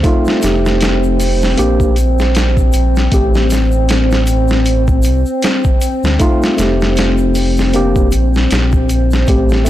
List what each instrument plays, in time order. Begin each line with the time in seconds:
Already playing: ambient pad C4 C5
0.03 tine electric piano A3 D#4 F4, kick, closed hi-hat, shaker
0.25 snare, shaker
0.40 analog synth bass F1, tine electric piano A3 D#4, closed hi-hat, shaker
0.44 tine electric piano G4, snare
0.66 snare, shaker
0.81 snare, closed hi-hat, shaker
1.03 shaker
1.20 open hi-hat, shaker
1.42 snare, shaker
1.57 analog synth bass A#1, tine electric piano A#3 D4 G4, closed hi-hat, shaker
1.80 kick, shaker
1.96 closed hi-hat, shaker
2.19 snare, shaker
2.35 snare, closed hi-hat, shaker
2.57 kick, shaker
2.73 analog synth bass A#1, closed hi-hat, shaker
2.95 snare, shaker
3.12 analog synth bass A1, tine electric piano A3 C4 G4, kick, closed hi-hat, shaker
3.34 snare, shaker
3.50 snare, closed hi-hat, shaker
3.72 shaker
3.88 snare, closed hi-hat, shaker
4.11 snare, shaker
4.27 closed hi-hat, shaker
4.48 snare, shaker
4.66 closed hi-hat, shaker
4.87 kick, shaker
5.03 analog synth bass C2, closed hi-hat, shaker
5.26 shaker
5.42 snare, closed hi-hat, shaker
5.64 kick, shaker
5.81 closed hi-hat, shaker
6.03 analog synth bass D2, snare, shaker
6.19 tine electric piano A3 D#4 F4, kick, closed hi-hat, shaker
6.42 snare, shaker
6.57 analog synth bass F1, tine electric piano A3 D#4, snare, closed hi-hat, shaker
6.62 tine electric piano G4
6.81 snare, shaker
6.96 snare, closed hi-hat, shaker
7.18 shaker
7.35 open hi-hat, shaker
7.57 snare, shaker
7.73 tine electric piano A#3 D4 G4, closed hi-hat, shaker
7.95 kick, shaker
8.12 analog synth bass A#1, closed hi-hat, shaker
8.34 snare, shaker
8.51 analog synth bass A#1, snare, closed hi-hat, shaker
8.72 kick, shaker
8.89 closed hi-hat, shaker
9.11 snare, shaker
9.27 analog synth bass A1, tine electric piano A3 C4 G4, ambient pad C4 C5, kick, closed hi-hat, shaker
9.49 snare, shaker
9.65 tine electric piano A3 C4, closed hi-hat, shaker